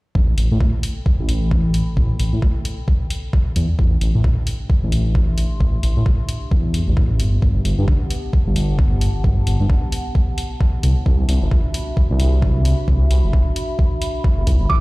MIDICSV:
0, 0, Header, 1, 5, 480
1, 0, Start_track
1, 0, Tempo, 454545
1, 159, Time_signature, 4, 2, 24, 8
1, 15634, End_track
2, 0, Start_track
2, 0, Title_t, "Synth bell"
2, 0, Program_c, 0, 98
2, 15518, Note_on_c, 0, 86, 82
2, 15612, Note_off_c, 0, 86, 0
2, 15634, End_track
3, 0, Start_track
3, 0, Title_t, "Ambient pad"
3, 0, Program_c, 1, 92
3, 157, Note_on_c, 1, 60, 74
3, 357, Note_on_c, 1, 69, 89
3, 451, Note_on_c, 1, 79, 72
3, 788, Note_on_c, 1, 83, 79
3, 3997, Note_on_c, 1, 62, 80
3, 3999, Note_off_c, 1, 83, 0
3, 4526, Note_on_c, 1, 67, 84
3, 4613, Note_off_c, 1, 60, 0
3, 4749, Note_on_c, 1, 76, 69
3, 4936, Note_off_c, 1, 69, 0
3, 5038, Note_off_c, 1, 79, 0
3, 5221, Note_on_c, 1, 84, 70
3, 7599, Note_off_c, 1, 84, 0
3, 7600, Note_on_c, 1, 59, 75
3, 8122, Note_on_c, 1, 78, 87
3, 8363, Note_on_c, 1, 81, 77
3, 8811, Note_off_c, 1, 76, 0
3, 8825, Note_off_c, 1, 62, 0
3, 11437, Note_off_c, 1, 67, 0
3, 11440, Note_on_c, 1, 62, 73
3, 11604, Note_on_c, 1, 76, 79
3, 11672, Note_on_c, 1, 66, 70
3, 11832, Note_on_c, 1, 83, 70
3, 12123, Note_off_c, 1, 78, 0
3, 12207, Note_off_c, 1, 59, 0
3, 13068, Note_off_c, 1, 81, 0
3, 15520, Note_off_c, 1, 66, 0
3, 15521, Note_on_c, 1, 60, 74
3, 15634, Note_off_c, 1, 60, 0
3, 15634, Note_off_c, 1, 62, 0
3, 15634, Note_off_c, 1, 76, 0
3, 15634, Note_off_c, 1, 83, 0
3, 15634, End_track
4, 0, Start_track
4, 0, Title_t, "Detuned saw bass"
4, 0, Program_c, 2, 39
4, 159, Note_on_c, 2, 33, 93
4, 349, Note_off_c, 2, 33, 0
4, 397, Note_on_c, 2, 33, 78
4, 505, Note_off_c, 2, 33, 0
4, 544, Note_on_c, 2, 45, 98
4, 614, Note_off_c, 2, 45, 0
4, 1265, Note_on_c, 2, 33, 98
4, 1923, Note_off_c, 2, 33, 0
4, 2078, Note_on_c, 2, 33, 94
4, 2268, Note_off_c, 2, 33, 0
4, 2317, Note_on_c, 2, 33, 80
4, 2425, Note_off_c, 2, 33, 0
4, 2461, Note_on_c, 2, 45, 96
4, 2532, Note_off_c, 2, 45, 0
4, 3758, Note_on_c, 2, 40, 81
4, 3865, Note_off_c, 2, 40, 0
4, 4000, Note_on_c, 2, 33, 94
4, 4189, Note_off_c, 2, 33, 0
4, 4239, Note_on_c, 2, 33, 81
4, 4345, Note_off_c, 2, 33, 0
4, 4384, Note_on_c, 2, 45, 94
4, 4454, Note_off_c, 2, 45, 0
4, 5104, Note_on_c, 2, 33, 100
4, 5762, Note_off_c, 2, 33, 0
4, 5918, Note_on_c, 2, 33, 94
4, 6108, Note_off_c, 2, 33, 0
4, 6158, Note_on_c, 2, 33, 80
4, 6265, Note_off_c, 2, 33, 0
4, 6302, Note_on_c, 2, 45, 95
4, 6373, Note_off_c, 2, 45, 0
4, 6878, Note_on_c, 2, 40, 80
4, 7202, Note_off_c, 2, 40, 0
4, 7263, Note_on_c, 2, 33, 98
4, 7597, Note_on_c, 2, 31, 86
4, 7613, Note_off_c, 2, 33, 0
4, 7787, Note_off_c, 2, 31, 0
4, 7839, Note_on_c, 2, 31, 92
4, 8028, Note_off_c, 2, 31, 0
4, 8077, Note_on_c, 2, 31, 80
4, 8184, Note_off_c, 2, 31, 0
4, 8222, Note_on_c, 2, 43, 97
4, 8293, Note_off_c, 2, 43, 0
4, 8944, Note_on_c, 2, 31, 97
4, 9602, Note_off_c, 2, 31, 0
4, 9760, Note_on_c, 2, 31, 94
4, 9949, Note_off_c, 2, 31, 0
4, 9996, Note_on_c, 2, 31, 81
4, 10104, Note_off_c, 2, 31, 0
4, 10142, Note_on_c, 2, 43, 96
4, 10213, Note_off_c, 2, 43, 0
4, 11439, Note_on_c, 2, 36, 80
4, 11545, Note_off_c, 2, 36, 0
4, 11679, Note_on_c, 2, 36, 92
4, 11868, Note_off_c, 2, 36, 0
4, 11919, Note_on_c, 2, 36, 82
4, 12025, Note_off_c, 2, 36, 0
4, 12063, Note_on_c, 2, 31, 97
4, 12133, Note_off_c, 2, 31, 0
4, 12785, Note_on_c, 2, 36, 99
4, 13442, Note_off_c, 2, 36, 0
4, 13599, Note_on_c, 2, 36, 95
4, 13789, Note_off_c, 2, 36, 0
4, 13838, Note_on_c, 2, 36, 79
4, 13945, Note_off_c, 2, 36, 0
4, 13984, Note_on_c, 2, 31, 97
4, 14054, Note_off_c, 2, 31, 0
4, 15184, Note_on_c, 2, 31, 81
4, 15254, Note_off_c, 2, 31, 0
4, 15281, Note_on_c, 2, 36, 83
4, 15387, Note_off_c, 2, 36, 0
4, 15424, Note_on_c, 2, 31, 90
4, 15494, Note_off_c, 2, 31, 0
4, 15520, Note_on_c, 2, 33, 98
4, 15634, Note_off_c, 2, 33, 0
4, 15634, End_track
5, 0, Start_track
5, 0, Title_t, "Drums"
5, 160, Note_on_c, 9, 36, 104
5, 265, Note_off_c, 9, 36, 0
5, 398, Note_on_c, 9, 46, 92
5, 504, Note_off_c, 9, 46, 0
5, 639, Note_on_c, 9, 36, 102
5, 745, Note_off_c, 9, 36, 0
5, 879, Note_on_c, 9, 46, 99
5, 985, Note_off_c, 9, 46, 0
5, 1119, Note_on_c, 9, 36, 109
5, 1224, Note_off_c, 9, 36, 0
5, 1359, Note_on_c, 9, 46, 97
5, 1465, Note_off_c, 9, 46, 0
5, 1599, Note_on_c, 9, 36, 109
5, 1704, Note_off_c, 9, 36, 0
5, 1838, Note_on_c, 9, 46, 98
5, 1944, Note_off_c, 9, 46, 0
5, 2079, Note_on_c, 9, 36, 107
5, 2185, Note_off_c, 9, 36, 0
5, 2318, Note_on_c, 9, 46, 92
5, 2424, Note_off_c, 9, 46, 0
5, 2559, Note_on_c, 9, 36, 108
5, 2665, Note_off_c, 9, 36, 0
5, 2799, Note_on_c, 9, 46, 97
5, 2905, Note_off_c, 9, 46, 0
5, 3039, Note_on_c, 9, 36, 106
5, 3145, Note_off_c, 9, 36, 0
5, 3279, Note_on_c, 9, 46, 97
5, 3384, Note_off_c, 9, 46, 0
5, 3520, Note_on_c, 9, 36, 111
5, 3625, Note_off_c, 9, 36, 0
5, 3759, Note_on_c, 9, 46, 98
5, 3864, Note_off_c, 9, 46, 0
5, 4000, Note_on_c, 9, 36, 108
5, 4105, Note_off_c, 9, 36, 0
5, 4238, Note_on_c, 9, 46, 88
5, 4344, Note_off_c, 9, 46, 0
5, 4480, Note_on_c, 9, 36, 113
5, 4585, Note_off_c, 9, 36, 0
5, 4718, Note_on_c, 9, 46, 94
5, 4823, Note_off_c, 9, 46, 0
5, 4959, Note_on_c, 9, 36, 112
5, 5065, Note_off_c, 9, 36, 0
5, 5198, Note_on_c, 9, 46, 93
5, 5304, Note_off_c, 9, 46, 0
5, 5439, Note_on_c, 9, 36, 109
5, 5545, Note_off_c, 9, 36, 0
5, 5677, Note_on_c, 9, 46, 93
5, 5783, Note_off_c, 9, 46, 0
5, 5919, Note_on_c, 9, 36, 112
5, 6024, Note_off_c, 9, 36, 0
5, 6159, Note_on_c, 9, 46, 88
5, 6264, Note_off_c, 9, 46, 0
5, 6399, Note_on_c, 9, 36, 110
5, 6505, Note_off_c, 9, 36, 0
5, 6638, Note_on_c, 9, 46, 94
5, 6744, Note_off_c, 9, 46, 0
5, 6879, Note_on_c, 9, 36, 111
5, 6985, Note_off_c, 9, 36, 0
5, 7118, Note_on_c, 9, 46, 93
5, 7224, Note_off_c, 9, 46, 0
5, 7359, Note_on_c, 9, 36, 108
5, 7465, Note_off_c, 9, 36, 0
5, 7599, Note_on_c, 9, 46, 90
5, 7705, Note_off_c, 9, 46, 0
5, 7839, Note_on_c, 9, 36, 101
5, 7945, Note_off_c, 9, 36, 0
5, 8079, Note_on_c, 9, 46, 85
5, 8185, Note_off_c, 9, 46, 0
5, 8319, Note_on_c, 9, 36, 106
5, 8425, Note_off_c, 9, 36, 0
5, 8559, Note_on_c, 9, 46, 94
5, 8664, Note_off_c, 9, 46, 0
5, 8800, Note_on_c, 9, 36, 107
5, 8905, Note_off_c, 9, 36, 0
5, 9039, Note_on_c, 9, 46, 92
5, 9145, Note_off_c, 9, 46, 0
5, 9279, Note_on_c, 9, 36, 105
5, 9385, Note_off_c, 9, 36, 0
5, 9519, Note_on_c, 9, 46, 92
5, 9624, Note_off_c, 9, 46, 0
5, 9759, Note_on_c, 9, 36, 100
5, 9865, Note_off_c, 9, 36, 0
5, 9999, Note_on_c, 9, 46, 94
5, 10105, Note_off_c, 9, 46, 0
5, 10239, Note_on_c, 9, 36, 103
5, 10345, Note_off_c, 9, 36, 0
5, 10479, Note_on_c, 9, 46, 94
5, 10585, Note_off_c, 9, 46, 0
5, 10719, Note_on_c, 9, 36, 101
5, 10825, Note_off_c, 9, 36, 0
5, 10959, Note_on_c, 9, 46, 95
5, 11065, Note_off_c, 9, 46, 0
5, 11199, Note_on_c, 9, 36, 99
5, 11305, Note_off_c, 9, 36, 0
5, 11440, Note_on_c, 9, 46, 96
5, 11545, Note_off_c, 9, 46, 0
5, 11679, Note_on_c, 9, 36, 101
5, 11785, Note_off_c, 9, 36, 0
5, 11920, Note_on_c, 9, 46, 93
5, 12025, Note_off_c, 9, 46, 0
5, 12159, Note_on_c, 9, 36, 100
5, 12265, Note_off_c, 9, 36, 0
5, 12400, Note_on_c, 9, 46, 101
5, 12506, Note_off_c, 9, 46, 0
5, 12639, Note_on_c, 9, 36, 104
5, 12745, Note_off_c, 9, 36, 0
5, 12880, Note_on_c, 9, 46, 101
5, 12985, Note_off_c, 9, 46, 0
5, 13119, Note_on_c, 9, 36, 103
5, 13225, Note_off_c, 9, 36, 0
5, 13360, Note_on_c, 9, 46, 101
5, 13466, Note_off_c, 9, 46, 0
5, 13600, Note_on_c, 9, 36, 107
5, 13705, Note_off_c, 9, 36, 0
5, 13841, Note_on_c, 9, 46, 98
5, 13946, Note_off_c, 9, 46, 0
5, 14080, Note_on_c, 9, 36, 101
5, 14186, Note_off_c, 9, 36, 0
5, 14321, Note_on_c, 9, 46, 104
5, 14426, Note_off_c, 9, 46, 0
5, 14561, Note_on_c, 9, 36, 104
5, 14666, Note_off_c, 9, 36, 0
5, 14801, Note_on_c, 9, 46, 101
5, 14907, Note_off_c, 9, 46, 0
5, 15041, Note_on_c, 9, 36, 107
5, 15147, Note_off_c, 9, 36, 0
5, 15280, Note_on_c, 9, 46, 99
5, 15281, Note_on_c, 9, 36, 54
5, 15386, Note_off_c, 9, 46, 0
5, 15387, Note_off_c, 9, 36, 0
5, 15521, Note_on_c, 9, 36, 105
5, 15627, Note_off_c, 9, 36, 0
5, 15634, End_track
0, 0, End_of_file